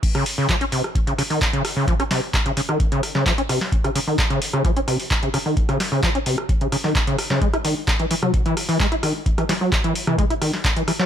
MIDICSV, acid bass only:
0, 0, Header, 1, 2, 480
1, 0, Start_track
1, 0, Tempo, 461538
1, 31, Time_signature, 4, 2, 24, 8
1, 11501, End_track
2, 0, Start_track
2, 0, Title_t, "Acid bass"
2, 0, Program_c, 0, 38
2, 155, Note_on_c, 0, 49, 101
2, 251, Note_off_c, 0, 49, 0
2, 395, Note_on_c, 0, 49, 93
2, 491, Note_off_c, 0, 49, 0
2, 511, Note_on_c, 0, 53, 84
2, 579, Note_off_c, 0, 53, 0
2, 634, Note_on_c, 0, 61, 76
2, 673, Note_off_c, 0, 61, 0
2, 751, Note_on_c, 0, 48, 70
2, 853, Note_off_c, 0, 48, 0
2, 1114, Note_on_c, 0, 49, 75
2, 1179, Note_off_c, 0, 49, 0
2, 1231, Note_on_c, 0, 49, 104
2, 1272, Note_off_c, 0, 49, 0
2, 1354, Note_on_c, 0, 51, 77
2, 1451, Note_off_c, 0, 51, 0
2, 1593, Note_on_c, 0, 49, 98
2, 1690, Note_off_c, 0, 49, 0
2, 1835, Note_on_c, 0, 49, 102
2, 1931, Note_off_c, 0, 49, 0
2, 1951, Note_on_c, 0, 53, 82
2, 2019, Note_off_c, 0, 53, 0
2, 2076, Note_on_c, 0, 61, 76
2, 2114, Note_off_c, 0, 61, 0
2, 2191, Note_on_c, 0, 48, 76
2, 2293, Note_off_c, 0, 48, 0
2, 2556, Note_on_c, 0, 49, 75
2, 2620, Note_off_c, 0, 49, 0
2, 2672, Note_on_c, 0, 49, 96
2, 2713, Note_off_c, 0, 49, 0
2, 2796, Note_on_c, 0, 51, 76
2, 2892, Note_off_c, 0, 51, 0
2, 3036, Note_on_c, 0, 49, 96
2, 3132, Note_off_c, 0, 49, 0
2, 3276, Note_on_c, 0, 49, 105
2, 3372, Note_off_c, 0, 49, 0
2, 3392, Note_on_c, 0, 53, 85
2, 3460, Note_off_c, 0, 53, 0
2, 3515, Note_on_c, 0, 61, 69
2, 3554, Note_off_c, 0, 61, 0
2, 3633, Note_on_c, 0, 48, 74
2, 3734, Note_off_c, 0, 48, 0
2, 3996, Note_on_c, 0, 49, 77
2, 4060, Note_off_c, 0, 49, 0
2, 4111, Note_on_c, 0, 49, 93
2, 4152, Note_off_c, 0, 49, 0
2, 4236, Note_on_c, 0, 51, 77
2, 4331, Note_off_c, 0, 51, 0
2, 4475, Note_on_c, 0, 49, 98
2, 4571, Note_off_c, 0, 49, 0
2, 4715, Note_on_c, 0, 49, 96
2, 4811, Note_off_c, 0, 49, 0
2, 4832, Note_on_c, 0, 53, 87
2, 4900, Note_off_c, 0, 53, 0
2, 4956, Note_on_c, 0, 61, 75
2, 4994, Note_off_c, 0, 61, 0
2, 5071, Note_on_c, 0, 48, 77
2, 5173, Note_off_c, 0, 48, 0
2, 5436, Note_on_c, 0, 49, 76
2, 5499, Note_off_c, 0, 49, 0
2, 5553, Note_on_c, 0, 49, 96
2, 5593, Note_off_c, 0, 49, 0
2, 5675, Note_on_c, 0, 51, 76
2, 5771, Note_off_c, 0, 51, 0
2, 5915, Note_on_c, 0, 49, 96
2, 6011, Note_off_c, 0, 49, 0
2, 6155, Note_on_c, 0, 49, 99
2, 6251, Note_off_c, 0, 49, 0
2, 6273, Note_on_c, 0, 53, 84
2, 6340, Note_off_c, 0, 53, 0
2, 6396, Note_on_c, 0, 61, 78
2, 6434, Note_off_c, 0, 61, 0
2, 6512, Note_on_c, 0, 48, 73
2, 6614, Note_off_c, 0, 48, 0
2, 6876, Note_on_c, 0, 49, 75
2, 6940, Note_off_c, 0, 49, 0
2, 6992, Note_on_c, 0, 49, 106
2, 7033, Note_off_c, 0, 49, 0
2, 7116, Note_on_c, 0, 51, 77
2, 7212, Note_off_c, 0, 51, 0
2, 7355, Note_on_c, 0, 49, 94
2, 7451, Note_off_c, 0, 49, 0
2, 7596, Note_on_c, 0, 49, 100
2, 7692, Note_off_c, 0, 49, 0
2, 7712, Note_on_c, 0, 56, 81
2, 7780, Note_off_c, 0, 56, 0
2, 7836, Note_on_c, 0, 64, 75
2, 7874, Note_off_c, 0, 64, 0
2, 7952, Note_on_c, 0, 51, 75
2, 8054, Note_off_c, 0, 51, 0
2, 8316, Note_on_c, 0, 52, 78
2, 8380, Note_off_c, 0, 52, 0
2, 8432, Note_on_c, 0, 52, 96
2, 8472, Note_off_c, 0, 52, 0
2, 8555, Note_on_c, 0, 54, 77
2, 8651, Note_off_c, 0, 54, 0
2, 8794, Note_on_c, 0, 52, 98
2, 8891, Note_off_c, 0, 52, 0
2, 9034, Note_on_c, 0, 52, 106
2, 9131, Note_off_c, 0, 52, 0
2, 9151, Note_on_c, 0, 56, 84
2, 9219, Note_off_c, 0, 56, 0
2, 9275, Note_on_c, 0, 64, 70
2, 9313, Note_off_c, 0, 64, 0
2, 9391, Note_on_c, 0, 51, 75
2, 9493, Note_off_c, 0, 51, 0
2, 9754, Note_on_c, 0, 52, 77
2, 9819, Note_off_c, 0, 52, 0
2, 9871, Note_on_c, 0, 52, 99
2, 9912, Note_off_c, 0, 52, 0
2, 9996, Note_on_c, 0, 54, 78
2, 10092, Note_off_c, 0, 54, 0
2, 10235, Note_on_c, 0, 52, 99
2, 10331, Note_off_c, 0, 52, 0
2, 10474, Note_on_c, 0, 52, 101
2, 10571, Note_off_c, 0, 52, 0
2, 10591, Note_on_c, 0, 56, 86
2, 10659, Note_off_c, 0, 56, 0
2, 10715, Note_on_c, 0, 64, 78
2, 10754, Note_off_c, 0, 64, 0
2, 10832, Note_on_c, 0, 51, 77
2, 10934, Note_off_c, 0, 51, 0
2, 11195, Note_on_c, 0, 52, 71
2, 11259, Note_off_c, 0, 52, 0
2, 11311, Note_on_c, 0, 52, 98
2, 11352, Note_off_c, 0, 52, 0
2, 11433, Note_on_c, 0, 54, 76
2, 11501, Note_off_c, 0, 54, 0
2, 11501, End_track
0, 0, End_of_file